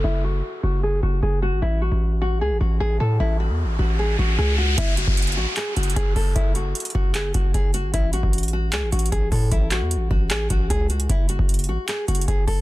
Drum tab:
HH |------------------------------------------------------------------------------------------------|------------------------------------------------------------------------------------------------|------------------------------------------------------------------------------------------------|x-----------x-----------x--x--x--x--------------x-----------x---x---x---x-----------o-----------|
CP |------------------------------------------------------------------------------------------------|------------------------------------------------------------------------------------------------|------------------------------------------------------------------------------------------------|------------------------------------------------x-----------------------------------------------|
BD |------------------------------------------------------------------------------------------------|------------------------------------------------------------------------------------------------|------------------------------------------------------------------------------------------------|o-----------------o-----------------------------------------------------o-----------o-----------|

HH |x-----------x-----------x--x--x--x--------------x-----------x-----------x-----------x-----------|x-----------x-----------x--x--x--x--------------x-----------x---x---x---x-----------o-----------|x-----------x-----------x-----------------------x-----------x-----------x-----------x-----x-----|x-----------x-----------x--x--x--x--------------x-----------x---x---x---x-----------o-----------|
CP |------------------------------------------------x-----------------------------------------------|------------------------------------------------x-----------------------------------------------|------------x-----------------------------------x-----------------------------------------------|------------------------------------------------x-----------------------------------------------|
BD |o-----------------------------------o-----------------------o-----------o-----------------------|o-----------------o-----------------------------------------------------o-----------o-----------|o-----------------------------------o-----------------------o-----------o-----------------------|o-----------------o-----------------------------------------------------o-----------o-----------|